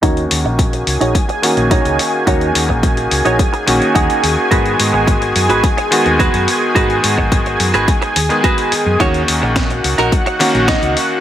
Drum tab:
HH |xxo-xxoxxxoxxxo-|xxo-xxoxxxoxxxo-|xxo-xxoxxxoxxxo-|xxo-xxoxxxoxxxo-|
SD |----------------|----------------|----------------|----------------|
BD |o---o---o---o---|o--oo---o---o---|o---o---o---o---|o--oo---o---o---|

HH |xxo-xxoxxxoxxxo-|
SD |----o-----o-o---|
BD |o---o---o---o---|